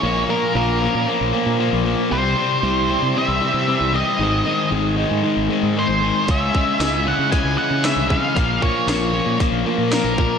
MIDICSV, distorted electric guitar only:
0, 0, Header, 1, 2, 480
1, 0, Start_track
1, 0, Tempo, 520382
1, 34, Time_signature, 4, 2, 24, 8
1, 9579, End_track
2, 0, Start_track
2, 0, Title_t, "Distorted electric guitar"
2, 0, Program_c, 0, 30
2, 25, Note_on_c, 0, 46, 86
2, 29, Note_on_c, 0, 53, 95
2, 30, Note_on_c, 0, 58, 102
2, 251, Note_off_c, 0, 46, 0
2, 259, Note_off_c, 0, 53, 0
2, 262, Note_off_c, 0, 58, 0
2, 262, Note_on_c, 0, 46, 79
2, 270, Note_on_c, 0, 53, 73
2, 273, Note_on_c, 0, 58, 83
2, 492, Note_off_c, 0, 46, 0
2, 494, Note_off_c, 0, 53, 0
2, 503, Note_on_c, 0, 46, 92
2, 504, Note_off_c, 0, 58, 0
2, 506, Note_on_c, 0, 53, 92
2, 515, Note_on_c, 0, 58, 97
2, 737, Note_off_c, 0, 46, 0
2, 742, Note_off_c, 0, 53, 0
2, 748, Note_on_c, 0, 46, 78
2, 749, Note_off_c, 0, 58, 0
2, 753, Note_on_c, 0, 53, 86
2, 760, Note_on_c, 0, 58, 84
2, 977, Note_off_c, 0, 46, 0
2, 978, Note_off_c, 0, 53, 0
2, 987, Note_off_c, 0, 58, 0
2, 988, Note_on_c, 0, 46, 89
2, 989, Note_on_c, 0, 53, 96
2, 998, Note_on_c, 0, 58, 97
2, 1218, Note_off_c, 0, 46, 0
2, 1219, Note_off_c, 0, 53, 0
2, 1224, Note_off_c, 0, 58, 0
2, 1229, Note_on_c, 0, 46, 81
2, 1230, Note_on_c, 0, 53, 86
2, 1235, Note_on_c, 0, 58, 88
2, 1456, Note_off_c, 0, 46, 0
2, 1460, Note_off_c, 0, 53, 0
2, 1461, Note_off_c, 0, 58, 0
2, 1468, Note_on_c, 0, 46, 89
2, 1471, Note_on_c, 0, 53, 93
2, 1473, Note_on_c, 0, 58, 88
2, 1695, Note_off_c, 0, 46, 0
2, 1701, Note_off_c, 0, 53, 0
2, 1702, Note_off_c, 0, 58, 0
2, 1706, Note_on_c, 0, 46, 81
2, 1712, Note_on_c, 0, 53, 76
2, 1713, Note_on_c, 0, 58, 83
2, 1937, Note_off_c, 0, 46, 0
2, 1940, Note_off_c, 0, 53, 0
2, 1940, Note_off_c, 0, 58, 0
2, 1943, Note_on_c, 0, 48, 92
2, 1950, Note_on_c, 0, 55, 91
2, 1953, Note_on_c, 0, 60, 107
2, 2179, Note_off_c, 0, 48, 0
2, 2180, Note_off_c, 0, 55, 0
2, 2190, Note_on_c, 0, 48, 76
2, 2191, Note_on_c, 0, 55, 81
2, 2195, Note_off_c, 0, 60, 0
2, 2199, Note_on_c, 0, 60, 86
2, 2417, Note_off_c, 0, 48, 0
2, 2420, Note_off_c, 0, 55, 0
2, 2428, Note_on_c, 0, 48, 92
2, 2430, Note_off_c, 0, 60, 0
2, 2431, Note_on_c, 0, 55, 103
2, 2434, Note_on_c, 0, 60, 105
2, 2652, Note_off_c, 0, 48, 0
2, 2653, Note_off_c, 0, 55, 0
2, 2663, Note_on_c, 0, 48, 85
2, 2664, Note_off_c, 0, 60, 0
2, 2664, Note_on_c, 0, 55, 86
2, 2668, Note_on_c, 0, 60, 87
2, 2898, Note_off_c, 0, 48, 0
2, 2903, Note_off_c, 0, 55, 0
2, 2905, Note_off_c, 0, 60, 0
2, 2909, Note_on_c, 0, 48, 81
2, 2914, Note_on_c, 0, 55, 94
2, 2916, Note_on_c, 0, 60, 99
2, 3135, Note_off_c, 0, 48, 0
2, 3138, Note_off_c, 0, 55, 0
2, 3140, Note_off_c, 0, 60, 0
2, 3146, Note_on_c, 0, 48, 78
2, 3149, Note_on_c, 0, 55, 81
2, 3151, Note_on_c, 0, 60, 90
2, 3376, Note_off_c, 0, 48, 0
2, 3378, Note_off_c, 0, 55, 0
2, 3380, Note_off_c, 0, 60, 0
2, 3387, Note_on_c, 0, 48, 94
2, 3389, Note_on_c, 0, 55, 95
2, 3391, Note_on_c, 0, 60, 91
2, 3610, Note_off_c, 0, 48, 0
2, 3619, Note_off_c, 0, 55, 0
2, 3620, Note_off_c, 0, 60, 0
2, 3621, Note_on_c, 0, 48, 74
2, 3630, Note_on_c, 0, 55, 82
2, 3631, Note_on_c, 0, 60, 91
2, 3855, Note_off_c, 0, 48, 0
2, 3860, Note_off_c, 0, 55, 0
2, 3860, Note_off_c, 0, 60, 0
2, 3865, Note_on_c, 0, 44, 98
2, 3868, Note_on_c, 0, 51, 102
2, 3872, Note_on_c, 0, 56, 99
2, 4094, Note_off_c, 0, 44, 0
2, 4095, Note_off_c, 0, 51, 0
2, 4105, Note_on_c, 0, 44, 72
2, 4106, Note_on_c, 0, 51, 80
2, 4107, Note_off_c, 0, 56, 0
2, 4110, Note_on_c, 0, 56, 80
2, 4332, Note_off_c, 0, 44, 0
2, 4332, Note_off_c, 0, 51, 0
2, 4340, Note_off_c, 0, 56, 0
2, 4343, Note_on_c, 0, 44, 85
2, 4343, Note_on_c, 0, 51, 92
2, 4344, Note_on_c, 0, 56, 102
2, 4571, Note_off_c, 0, 44, 0
2, 4575, Note_off_c, 0, 51, 0
2, 4582, Note_on_c, 0, 44, 78
2, 4585, Note_off_c, 0, 56, 0
2, 4586, Note_on_c, 0, 51, 84
2, 4589, Note_on_c, 0, 56, 87
2, 4814, Note_off_c, 0, 44, 0
2, 4819, Note_off_c, 0, 51, 0
2, 4821, Note_off_c, 0, 56, 0
2, 4825, Note_on_c, 0, 44, 79
2, 4830, Note_on_c, 0, 51, 87
2, 4832, Note_on_c, 0, 56, 92
2, 5060, Note_off_c, 0, 44, 0
2, 5064, Note_off_c, 0, 51, 0
2, 5068, Note_off_c, 0, 56, 0
2, 5071, Note_on_c, 0, 44, 81
2, 5075, Note_on_c, 0, 51, 85
2, 5079, Note_on_c, 0, 56, 87
2, 5299, Note_off_c, 0, 44, 0
2, 5306, Note_off_c, 0, 51, 0
2, 5310, Note_on_c, 0, 44, 93
2, 5311, Note_off_c, 0, 56, 0
2, 5317, Note_on_c, 0, 51, 97
2, 5322, Note_on_c, 0, 56, 98
2, 5539, Note_off_c, 0, 44, 0
2, 5541, Note_off_c, 0, 51, 0
2, 5547, Note_off_c, 0, 56, 0
2, 5550, Note_on_c, 0, 44, 82
2, 5552, Note_on_c, 0, 51, 82
2, 5558, Note_on_c, 0, 56, 85
2, 5779, Note_off_c, 0, 56, 0
2, 5780, Note_off_c, 0, 44, 0
2, 5781, Note_off_c, 0, 51, 0
2, 5786, Note_on_c, 0, 49, 90
2, 5790, Note_on_c, 0, 56, 97
2, 5797, Note_on_c, 0, 61, 99
2, 6016, Note_off_c, 0, 49, 0
2, 6019, Note_off_c, 0, 56, 0
2, 6027, Note_on_c, 0, 49, 75
2, 6030, Note_off_c, 0, 61, 0
2, 6031, Note_on_c, 0, 56, 77
2, 6034, Note_on_c, 0, 61, 81
2, 6253, Note_off_c, 0, 49, 0
2, 6260, Note_off_c, 0, 56, 0
2, 6264, Note_on_c, 0, 49, 85
2, 6271, Note_on_c, 0, 56, 99
2, 6273, Note_off_c, 0, 61, 0
2, 6277, Note_on_c, 0, 61, 99
2, 6494, Note_off_c, 0, 49, 0
2, 6501, Note_off_c, 0, 56, 0
2, 6505, Note_on_c, 0, 49, 80
2, 6513, Note_on_c, 0, 56, 83
2, 6514, Note_off_c, 0, 61, 0
2, 6517, Note_on_c, 0, 61, 82
2, 6740, Note_off_c, 0, 49, 0
2, 6745, Note_off_c, 0, 56, 0
2, 6751, Note_off_c, 0, 61, 0
2, 6751, Note_on_c, 0, 49, 84
2, 6756, Note_on_c, 0, 56, 83
2, 6762, Note_on_c, 0, 61, 102
2, 6976, Note_off_c, 0, 49, 0
2, 6983, Note_off_c, 0, 56, 0
2, 6984, Note_off_c, 0, 61, 0
2, 6987, Note_on_c, 0, 49, 79
2, 6994, Note_on_c, 0, 56, 82
2, 6995, Note_on_c, 0, 61, 90
2, 7222, Note_off_c, 0, 49, 0
2, 7223, Note_off_c, 0, 56, 0
2, 7228, Note_off_c, 0, 61, 0
2, 7234, Note_on_c, 0, 49, 91
2, 7234, Note_on_c, 0, 56, 101
2, 7239, Note_on_c, 0, 61, 101
2, 7454, Note_off_c, 0, 49, 0
2, 7455, Note_off_c, 0, 56, 0
2, 7461, Note_off_c, 0, 61, 0
2, 7465, Note_on_c, 0, 49, 80
2, 7466, Note_on_c, 0, 56, 82
2, 7472, Note_on_c, 0, 61, 87
2, 7697, Note_off_c, 0, 49, 0
2, 7697, Note_off_c, 0, 56, 0
2, 7700, Note_off_c, 0, 61, 0
2, 7702, Note_on_c, 0, 46, 96
2, 7704, Note_on_c, 0, 53, 103
2, 7705, Note_on_c, 0, 58, 104
2, 7930, Note_off_c, 0, 46, 0
2, 7937, Note_off_c, 0, 53, 0
2, 7938, Note_off_c, 0, 58, 0
2, 7941, Note_on_c, 0, 46, 70
2, 7948, Note_on_c, 0, 53, 80
2, 7949, Note_on_c, 0, 58, 86
2, 8168, Note_off_c, 0, 46, 0
2, 8173, Note_off_c, 0, 53, 0
2, 8174, Note_off_c, 0, 58, 0
2, 8179, Note_on_c, 0, 46, 88
2, 8184, Note_on_c, 0, 53, 104
2, 8186, Note_on_c, 0, 58, 100
2, 8409, Note_off_c, 0, 46, 0
2, 8415, Note_off_c, 0, 58, 0
2, 8416, Note_off_c, 0, 53, 0
2, 8420, Note_on_c, 0, 46, 76
2, 8426, Note_on_c, 0, 58, 83
2, 8428, Note_on_c, 0, 53, 85
2, 8649, Note_off_c, 0, 46, 0
2, 8655, Note_off_c, 0, 53, 0
2, 8656, Note_off_c, 0, 58, 0
2, 8660, Note_on_c, 0, 46, 87
2, 8666, Note_on_c, 0, 53, 96
2, 8667, Note_on_c, 0, 58, 98
2, 8891, Note_off_c, 0, 46, 0
2, 8897, Note_off_c, 0, 53, 0
2, 8901, Note_off_c, 0, 58, 0
2, 8902, Note_on_c, 0, 46, 81
2, 8908, Note_on_c, 0, 53, 88
2, 8912, Note_on_c, 0, 58, 92
2, 9140, Note_off_c, 0, 46, 0
2, 9145, Note_off_c, 0, 53, 0
2, 9148, Note_off_c, 0, 58, 0
2, 9151, Note_on_c, 0, 46, 96
2, 9156, Note_on_c, 0, 53, 99
2, 9159, Note_on_c, 0, 58, 102
2, 9377, Note_off_c, 0, 46, 0
2, 9382, Note_off_c, 0, 53, 0
2, 9384, Note_off_c, 0, 58, 0
2, 9388, Note_on_c, 0, 46, 88
2, 9393, Note_on_c, 0, 53, 74
2, 9395, Note_on_c, 0, 58, 85
2, 9579, Note_off_c, 0, 46, 0
2, 9579, Note_off_c, 0, 53, 0
2, 9579, Note_off_c, 0, 58, 0
2, 9579, End_track
0, 0, End_of_file